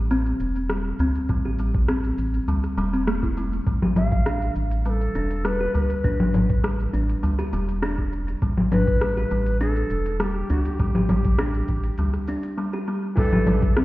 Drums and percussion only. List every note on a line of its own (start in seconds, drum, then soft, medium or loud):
0.11 shaker soft
0.26 shaker soft
0.40 shaker medium
0.56 shaker soft
0.70 cross-stick medium
0.70 shaker soft
0.99 shaker medium
1.15 shaker soft
1.29 kick loud
1.29 shaker soft
1.59 shaker medium
1.74 kick loud
1.74 shaker soft
1.88 cross-stick medium
1.88 shaker soft
2.04 shaker soft
2.18 shaker medium
2.34 shaker soft
2.48 shaker soft
2.64 cross-stick soft
2.64 shaker soft
2.78 shaker medium
2.94 shaker soft
3.08 cross-stick medium
3.08 shaker soft
3.23 kick medium
3.23 shaker soft
3.37 shaker medium
3.53 shaker soft
3.67 kick loud
3.67 open hi-hat soft
3.67 shaker soft
3.82 low conga medium
3.96 low conga medium
3.96 shaker medium
4.12 kick loud
4.12 open hi-hat soft
4.12 shaker soft
4.26 cross-stick medium
4.26 open hi-hat soft
4.26 shaker soft
4.42 shaker soft
4.56 shaker medium
4.71 open hi-hat soft
4.71 shaker soft
4.85 open hi-hat soft
4.85 shaker soft
5.01 shaker soft
5.15 shaker medium
5.31 open hi-hat soft
5.31 shaker soft
5.45 cross-stick medium
5.45 open hi-hat soft
5.45 shaker soft
5.75 shaker medium
5.90 open hi-hat medium
5.90 shaker soft
6.04 kick loud
6.04 open hi-hat soft
6.04 shaker soft
6.20 low conga medium
6.34 low conga medium
6.34 shaker medium
6.50 kick loud
6.50 open hi-hat medium
6.50 shaker soft
6.64 cross-stick medium
6.64 open hi-hat soft
6.64 shaker soft
6.80 shaker soft
6.94 shaker medium
7.10 open hi-hat medium
7.10 shaker soft
7.23 open hi-hat soft
7.23 shaker soft
7.39 shaker soft
7.53 shaker medium
7.69 open hi-hat medium
7.69 shaker soft
7.83 cross-stick medium
7.83 open hi-hat soft
7.83 shaker soft
7.98 kick medium
8.13 shaker medium
8.28 open hi-hat medium
8.28 shaker soft
8.42 kick loud
8.42 open hi-hat soft
8.42 shaker soft
8.58 low conga medium
8.72 low conga medium
8.72 shaker medium
8.87 kick loud
8.87 open hi-hat medium
8.87 shaker soft
9.01 cross-stick medium
9.01 open hi-hat soft
9.01 shaker soft
9.17 shaker soft
9.31 shaker medium
9.46 open hi-hat medium
9.46 shaker soft
9.61 open hi-hat soft
9.61 shaker soft
9.76 shaker soft
9.90 shaker medium
10.06 open hi-hat medium
10.06 shaker soft
10.20 cross-stick medium
10.20 open hi-hat soft
10.20 shaker soft
10.50 shaker medium
10.65 open hi-hat medium
10.65 shaker soft
10.80 kick loud
10.80 open hi-hat soft
10.80 shaker soft
10.95 low conga medium
10.95 shaker soft
11.09 low conga medium
11.09 shaker medium
11.25 kick loud
11.25 open hi-hat medium
11.25 shaker soft
11.39 cross-stick loud
11.39 open hi-hat soft
11.39 shaker soft
11.54 shaker soft
11.68 kick medium
11.68 shaker medium
11.84 open hi-hat medium
11.84 shaker soft
11.98 open hi-hat soft
11.98 shaker soft
12.14 cross-stick soft
12.14 shaker soft
12.28 shaker medium
12.43 open hi-hat medium
12.43 shaker soft
13.17 kick loud
13.17 open hi-hat soft
13.17 crash medium
13.17 shaker soft
13.33 low conga medium
13.47 low conga medium
13.47 shaker medium
13.62 kick loud
13.62 open hi-hat medium
13.62 shaker soft
13.77 cross-stick loud
13.77 open hi-hat soft
13.77 shaker soft